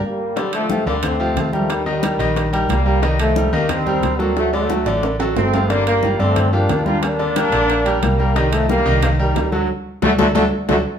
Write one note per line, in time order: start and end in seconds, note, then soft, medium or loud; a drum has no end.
0.04 0.35 G3 medium
0.04 0.35 A#3 medium
0.36 0.64 D3 medium
0.36 0.54 D3 medium
0.36 0.54 G3 medium
0.36 0.64 D4 medium
0.36 0.64 D5 medium
0.36 high bongo medium
0.36 high conga soft
0.36 high timbale medium
0.53 0.85 F3 medium
0.53 0.85 A3 medium
0.53 high bongo soft
0.53 high conga soft
0.53 high timbale medium
0.69 0.83 F3 medium
0.69 0.83 F4 medium
0.69 0.84 G4 medium
0.69 high bongo medium
0.69 high conga medium
0.86 1.33 D2 loud
0.86 1.14 D3 medium
0.86 0.96 G3 medium
0.86 0.95 A#3 medium
0.86 1.14 D4 medium
0.86 1.14 D5 medium
0.86 high bongo soft
0.86 high conga soft
1.03 1.51 A3 medium
1.03 1.50 C4 medium
1.03 high bongo medium
1.03 high conga soft
1.03 low conga medium
1.03 high timbale loud
1.20 1.47 F3 medium
1.20 1.47 F4 medium
1.20 1.47 G4 medium
1.20 high conga soft
1.36 2.14 D#2 medium
1.36 high bongo soft
1.36 low bongo medium
1.36 high conga soft
1.36 high timbale medium
1.36 low timbale medium
1.53 1.69 F3 medium
1.53 1.80 G3 medium
1.53 1.69 A3 medium
1.53 1.81 G4 medium
1.53 1.81 A#4 medium
1.53 high bongo soft
1.53 high conga medium
1.70 1.86 D#3 medium
1.70 1.86 G3 medium
1.70 high bongo medium
1.70 high conga soft
1.70 high timbale medium
1.86 2.00 D#3 medium
1.86 2.66 D#3 medium
1.86 2.66 G3 medium
1.86 2.00 D#4 medium
1.86 2.00 D#5 medium
1.86 high bongo soft
1.86 high conga soft
2.03 2.16 G3 medium
2.03 2.17 G4 medium
2.03 2.17 A#4 medium
2.03 high bongo medium
2.03 high conga loud
2.03 high timbale medium
2.19 2.66 A#1 medium
2.19 2.47 D#3 medium
2.19 2.47 D#4 medium
2.19 2.47 D#5 medium
2.19 high bongo soft
2.19 high conga soft
2.19 high timbale medium
2.36 high bongo medium
2.36 high conga soft
2.36 high timbale medium
2.53 2.80 G3 medium
2.53 2.80 G4 medium
2.53 2.80 A#4 medium
2.53 high conga soft
2.53 high timbale medium
2.69 3.47 C2 loud
2.69 3.02 G3 medium
2.69 3.03 A#3 medium
2.69 high bongo soft
2.69 low bongo medium
2.69 high conga medium
2.69 high timbale loud
2.86 3.00 G3 medium
2.86 3.00 G4 medium
2.86 3.00 A#4 medium
2.86 high bongo soft
3.02 3.30 D#3 medium
3.02 3.20 D#3 medium
3.02 3.20 G3 loud
3.02 3.30 D#4 medium
3.02 3.30 D#5 medium
3.02 high bongo medium
3.02 high conga soft
3.02 high timbale medium
3.19 3.52 F3 medium
3.19 3.51 A3 medium
3.19 high bongo soft
3.19 high conga soft
3.19 high timbale loud
3.36 3.50 G3 medium
3.36 3.50 G4 medium
3.36 3.50 A#4 medium
3.36 high bongo medium
3.36 high conga loud
3.52 3.99 D#2 loud
3.52 3.80 D#3 medium
3.52 3.70 G3 medium
3.52 3.69 A#3 medium
3.52 3.80 D#4 medium
3.52 3.80 D#5 medium
3.52 high bongo soft
3.52 high conga soft
3.69 4.20 G3 medium
3.69 4.20 C4 loud
3.69 high bongo medium
3.69 high conga soft
3.69 low conga medium
3.69 high timbale medium
3.86 4.13 G3 medium
3.86 4.14 G4 medium
3.86 4.14 A#4 medium
3.86 high conga soft
3.86 low conga medium
4.03 4.80 D2 medium
4.03 high bongo soft
4.03 low bongo medium
4.03 high conga soft
4.03 high timbale medium
4.19 4.47 F#3 medium
4.19 4.37 G3 medium
4.19 4.36 A#3 medium
4.19 4.47 F#4 medium
4.19 4.47 A4 medium
4.19 high bongo soft
4.19 high conga medium
4.37 4.53 F#3 medium
4.37 4.52 A3 loud
4.37 high bongo medium
4.37 high conga soft
4.37 high timbale medium
4.53 4.67 D3 medium
4.53 5.06 F#3 medium
4.53 5.05 A3 medium
4.53 4.67 D4 medium
4.53 4.67 D5 medium
4.53 high bongo soft
4.53 high conga soft
4.69 4.83 F#3 medium
4.69 4.84 F#4 medium
4.69 4.84 A4 medium
4.69 high bongo medium
4.69 high conga medium
4.69 high timbale medium
4.86 5.32 A1 loud
4.86 5.13 D3 medium
4.86 5.13 D4 medium
4.86 5.14 D5 medium
4.86 high conga soft
4.86 high timbale medium
5.03 high bongo medium
5.03 high conga soft
5.03 low timbale medium
5.19 5.47 F#3 medium
5.19 5.47 F#4 medium
5.19 5.47 A4 medium
5.19 high conga soft
5.19 low timbale loud
5.36 6.14 G1 medium
5.36 5.68 A3 medium
5.36 5.67 C4 loud
5.36 high bongo soft
5.36 low bongo medium
5.36 high conga medium
5.36 low timbale medium
5.53 5.66 F3 medium
5.53 5.67 F4 medium
5.53 5.67 G4 medium
5.53 high bongo soft
5.53 high conga medium
5.53 low timbale medium
5.69 5.97 D3 medium
5.69 5.87 G3 medium
5.69 5.86 A#3 loud
5.69 5.97 D4 medium
5.69 5.97 D5 medium
5.69 high bongo medium
5.69 high conga soft
5.69 high timbale medium
5.87 6.18 G3 medium
5.87 6.17 A#3 loud
5.87 high bongo soft
5.87 high conga soft
5.87 high timbale medium
6.03 6.17 F3 medium
6.03 6.17 F4 medium
6.03 6.17 G4 medium
6.03 high bongo medium
6.03 high conga loud
6.19 6.66 G2 loud
6.19 6.47 D3 medium
6.19 6.53 A3 medium
6.19 6.53 C4 loud
6.19 6.47 D4 medium
6.19 6.47 D5 medium
6.19 high bongo soft
6.19 high conga soft
6.36 high bongo medium
6.36 high conga soft
6.36 low conga medium
6.36 high timbale medium
6.53 6.80 F3 medium
6.53 6.87 A#3 medium
6.53 6.85 D4 medium
6.53 6.80 F4 medium
6.53 6.80 G4 medium
6.53 high conga soft
6.69 7.47 D#2 medium
6.69 high bongo soft
6.69 low bongo medium
6.69 high conga soft
6.69 high timbale medium
6.69 low timbale medium
6.85 7.13 G3 medium
6.85 7.01 D4 medium
6.85 7.02 F4 medium
6.85 7.13 G4 medium
6.85 7.13 A#4 medium
6.85 high bongo soft
6.85 high conga medium
7.02 7.99 A#3 medium
7.02 7.98 D4 loud
7.02 high bongo medium
7.02 high conga soft
7.02 high timbale loud
7.19 7.33 D3 medium
7.19 7.33 D4 medium
7.19 7.33 D5 medium
7.19 high bongo soft
7.19 high conga soft
7.36 7.50 G3 medium
7.36 7.50 G4 medium
7.36 7.50 A#4 medium
7.36 high bongo medium
7.36 high conga medium
7.36 high timbale medium
7.52 7.99 A#1 medium
7.52 7.80 D3 medium
7.52 7.80 D4 medium
7.52 7.80 D5 medium
7.52 high bongo soft
7.52 high conga soft
7.52 high timbale medium
7.69 high bongo medium
7.69 high conga soft
7.69 high timbale medium
7.85 8.13 G3 medium
7.85 8.13 G4 medium
7.85 8.13 A#4 medium
7.85 high conga soft
7.85 high timbale medium
8.02 8.80 C2 medium
8.02 8.34 G3 medium
8.02 8.33 A#3 medium
8.02 high bongo soft
8.02 low bongo medium
8.02 high conga medium
8.02 high timbale loud
8.19 8.33 G3 medium
8.19 8.33 G4 medium
8.19 8.33 A#4 medium
8.19 high bongo soft
8.36 8.63 D#3 medium
8.36 8.53 D#3 medium
8.36 8.53 G3 loud
8.36 8.63 D#4 medium
8.36 8.63 D#5 medium
8.36 high bongo medium
8.36 high timbale medium
8.53 8.70 F3 medium
8.53 8.69 A3 medium
8.53 high bongo soft
8.53 high conga soft
8.53 high timbale loud
8.69 8.83 G3 medium
8.69 9.01 G3 medium
8.69 9.00 A#3 loud
8.69 8.83 G4 medium
8.69 8.83 A#4 medium
8.69 high bongo medium
8.69 high conga loud
8.85 9.32 C2 loud
8.85 9.13 D#3 medium
8.85 9.13 D#4 loud
8.85 9.13 D#5 medium
8.85 high bongo soft
8.85 high conga soft
9.03 9.11 G3 medium
9.03 9.10 A#3 medium
9.03 high bongo medium
9.03 high conga soft
9.03 low conga medium
9.03 high timbale loud
9.19 9.50 D#3 medium
9.19 9.50 G3 medium
9.19 9.46 G3 medium
9.19 9.46 G4 medium
9.19 9.47 A#4 medium
9.19 high conga soft
9.35 9.66 D2 medium
9.35 high bongo soft
9.35 low bongo medium
9.35 high conga soft
9.35 high timbale medium
9.35 low timbale medium
9.52 9.69 D3 medium
9.52 9.66 F#3 medium
9.52 9.69 F#3 medium
9.52 9.66 F#4 medium
9.52 9.66 A4 medium
9.52 high bongo soft
9.52 high conga medium
10.02 10.15 D2 loud
10.02 10.11 D3 loud
10.02 10.11 F#3 loud
10.02 10.11 A3 loud
10.02 10.13 D4 medium
10.02 10.13 F#4 medium
10.02 10.13 A4 medium
10.02 low bongo loud
10.02 high conga loud
10.02 high timbale medium
10.18 10.31 D2 loud
10.18 10.27 D3 loud
10.18 10.27 F#3 medium
10.18 10.27 A3 medium
10.18 10.29 D4 loud
10.18 10.29 F#4 loud
10.18 10.29 A4 loud
10.18 low bongo loud
10.18 high conga loud
10.18 high timbale loud
10.35 10.48 D2 loud
10.35 10.44 D3 medium
10.35 10.43 F#3 medium
10.35 10.44 A3 medium
10.35 10.46 D4 loud
10.35 10.46 F#4 loud
10.35 10.46 A4 loud
10.35 low bongo loud
10.35 high conga loud
10.35 high timbale loud
10.69 10.82 D2 medium
10.69 10.77 D3 medium
10.69 10.77 F#3 medium
10.69 10.77 A3 medium
10.69 10.79 D4 medium
10.69 10.79 F#4 loud
10.69 10.79 A4 medium
10.69 low bongo medium
10.69 high conga medium
10.69 high timbale loud